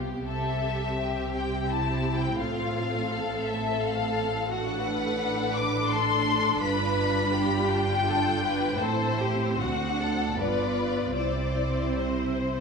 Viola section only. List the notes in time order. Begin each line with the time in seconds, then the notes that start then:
Already playing: B3 G4
0.28 C4 G4
2.41 A4
4.50 D4
6.63 F4
8.80 C4 E4
9.59 D4
10.36 B3 F4
11.15 C4 E4